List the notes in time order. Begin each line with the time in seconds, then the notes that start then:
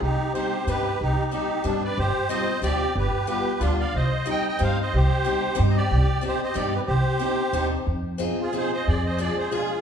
0.01 C2 D#4 G4
0.34 G3 C4 D4 D#4 G4 C5
0.67 G2 G3 C4 D4 D#4 G4 B4
1.01 C2 D#4 G4
1.31 G3 C4 D4 D#4 G4
1.64 G2 G3 C4 D4 D#4
1.84 B4 D5
1.98 G1 G4 C5
2.29 G3 C4 D4 F4 C5 D#5
2.62 D2 G3 C4 D4 F4 G4 D5
2.96 G1 G4 B4
3.27 G3 B3 D4 F4 G4 B4
3.59 D2 G3 B3 D4 F4
3.80 D5 F5
3.94 C2 C5 D#5
4.26 G3 C4 D#4 G4
4.30 D#5 G5
4.48 D#5 G5
4.59 G2 G3 C4 D#4 G4 C5 F5
4.81 C5 D#5
4.94 C2 G4 C5
5.25 G3 C4 D#4 G4
5.55 G3 C4 D#4 G4
5.59 G2
5.70 D#5
5.76 G4 D5
5.91 C2
6.21 C4 D4 D#4 G4
6.26 G4 C5
6.42 C5 D#5
6.54 G2 C4 D4 D#4 G4 D5
6.72 G4 B4
6.86 C2 G4 C5
7.20 C4 D4 D#4 G4
7.53 D#2 C4 D4 D#4 G4
7.87 F2
8.18 C4 D#4 F4 G#4
8.40 F4 G#4
8.53 C4 D#4 F4 G#4
8.57 C5
8.73 C5 D#5
8.87 F2 G#4 D5
9.05 C5 D#5
9.19 G#3 D4 F4 G#4 D5
9.38 G#4 C5
9.51 G#3 D4 F4 G#4